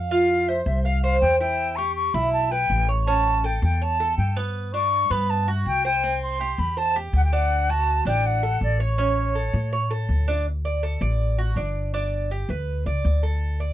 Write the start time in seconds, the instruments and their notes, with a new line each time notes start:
Already playing: upright bass F2, cuban tres F5
0.11 cuban tres F4, flute F5
0.48 cuban tres C5, flute E5
0.65 upright bass C2, flute E5
0.83 flute F5, cuban tres F5
1.02 cuban tres C5, flute F5
1.21 upright bass E2, flute G5
1.39 cuban tres E4, flute G5
1.76 cuban tres G4, flute C#6
1.95 flute C#6
2.14 upright bass B1, cuban tres E4, flute B5
2.33 flute A5
2.51 cuban tres B4, flute G5
2.70 upright bass A1
2.89 cuban tres C#5
3.07 cuban tres C#4, flute A5
3.44 cuban tres A4, flute G5
3.62 upright bass E2, flute G5
3.82 cuban tres C#5, flute A5
4.00 cuban tres A4
4.18 upright bass G2, flute G5
4.36 cuban tres B3
4.73 cuban tres D4, flute C#6
5.10 upright bass G2, cuban tres B3, flute B5
5.30 flute A5
5.48 cuban tres F#4
5.66 upright bass C2, flute G5
5.85 cuban tres C5, flute G5
6.03 cuban tres C4
6.23 flute C6
6.40 cuban tres G4
6.58 upright bass E2, flute B5
6.77 cuban tres C5, flute A5
6.96 cuban tres G4
7.13 upright bass D2, flute F#5
7.24 flute G5
7.33 cuban tres D4, flute F#5
7.69 cuban tres F#4, flute A5
8.05 upright bass A1, cuban tres D4, flute G5
8.26 flute F#5
8.43 cuban tres A4
8.61 upright bass A1, flute D5
8.80 cuban tres C#5, flute C#5
8.98 cuban tres C#4
9.35 cuban tres A4
9.54 upright bass A2
9.73 cuban tres C#5
9.91 cuban tres A4
10.09 upright bass D2
10.28 cuban tres D4
10.65 cuban tres D5
10.83 cuban tres A4
11.01 upright bass A1, cuban tres D5
11.38 cuban tres F#4
11.56 upright bass G1, cuban tres D4
11.94 cuban tres D4
12.31 cuban tres G4
12.49 upright bass D2, cuban tres B4
12.86 upright bass C#2, cuban tres D5
13.05 upright bass D2
13.23 cuban tres A4
13.60 cuban tres D5